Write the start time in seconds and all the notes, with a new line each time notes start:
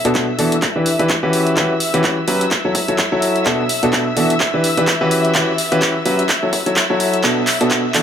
Already playing: E5 E6
0.05 B2 B3 D4 F#4 A4, closed hi-hat
0.15 kick, clap, closed hi-hat
0.39 E3 B3 D4 F#4 A4, open hi-hat
0.52 closed hi-hat
0.62 kick, clap, closed hi-hat
0.76 E3 D4 E4 G4 B4
0.86 open hi-hat
0.99 E3 D4 E4 G4 B4, closed hi-hat
1.10 kick, clap, closed hi-hat
1.23 E3 C#4 F#4 G4 B4
1.33 open hi-hat
1.47 closed hi-hat
1.57 E3 C#4 F#4 G4 B4, kick, clap, closed hi-hat
1.80 open hi-hat
1.94 E3 C#4 F#4 G4 B4, closed hi-hat
2.04 kick, clap, closed hi-hat
2.28 F#3 C#4 F#4 G4 B4, open hi-hat
2.41 closed hi-hat
2.51 kick, clap, closed hi-hat
2.65 F#3 E4 F#4 A4 C#5
2.75 kick, open hi-hat
2.88 F#3 E4 F#4 A4 C#5, closed hi-hat
2.98 kick, clap, closed hi-hat
3.12 F#3 E4 F#4 A4 C#5
3.22 open hi-hat
3.36 closed hi-hat
3.46 B2 B3 D4 F#4 A4, kick, clap, closed hi-hat
3.69 open hi-hat
3.83 B2 B3 D4 F#4 A4, closed hi-hat
3.93 kick, clap, closed hi-hat
4.17 E3 B3 D4 F#4 A4, open hi-hat
4.30 closed hi-hat
4.40 kick, clap, closed hi-hat
4.54 E3 D4 E4 G4 B4
4.64 open hi-hat
4.77 E3 D4 E4 G4 B4, closed hi-hat
4.87 kick, clap, closed hi-hat
5.01 E3 C#4 F#4 G4 B4
5.11 open hi-hat
5.25 closed hi-hat
5.35 E3 C#4 F#4 G4 B4, kick, clap, closed hi-hat
5.58 open hi-hat
5.72 E3 C#4 F#4 G4 B4, closed hi-hat
5.82 kick, clap, closed hi-hat
6.06 F#3 C#4 F#4 G4 B4, open hi-hat
6.19 closed hi-hat
6.29 kick, clap, closed hi-hat
6.43 F#3 E4 F#4 A4 C#5
6.53 kick, open hi-hat
6.66 F#3 E4 F#4 A4 C#5, closed hi-hat
6.76 kick, clap, closed hi-hat
6.90 F#3 E4 F#4 A4 C#5
7.00 open hi-hat
7.14 closed hi-hat
7.24 B2 B3 D4 F#4 A4, kick, clap, closed hi-hat
7.47 clap, open hi-hat
7.61 B2 B3 D4 F#4 A4, closed hi-hat
7.71 kick, clap, closed hi-hat
7.94 E3 B3 D4 F#4 A4, clap, open hi-hat